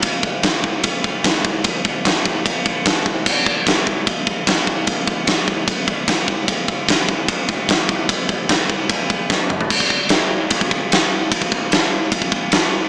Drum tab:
CC |----------------|----------------|x---------------|----------------|
RD |b---b---b---b---|b---b---b---b---|----b---b---b---|b---b---b---b---|
SD |----o-------o---|----o-------o---|----o-------o---|----o-------o---|
T2 |----------------|----------------|----------------|----------------|
FT |----------------|----------------|----------------|----------------|
BD |o-o-o-o-o-o-o-o-|o-o-o-o-o-o-o-o-|o-o-o-o-o-o-o-o-|o-o-o-o-o-o-o-o-|

CC |----------------|----------------|x---------------|----------------|
RD |b---b---b---b---|b---b---b-------|----b---b---b---|b---b---b---b---|
SD |----o-------o---|----o-------o---|----o-------o---|----o-------o---|
T2 |----------------|--------------o-|----------------|----------------|
FT |----------------|---------------o|----------------|----------------|
BD |o-o-o-o-o-o-o-o-|o-o-o-o-o-o-o---|ooo-----ooo-----|ooo-----ooo-----|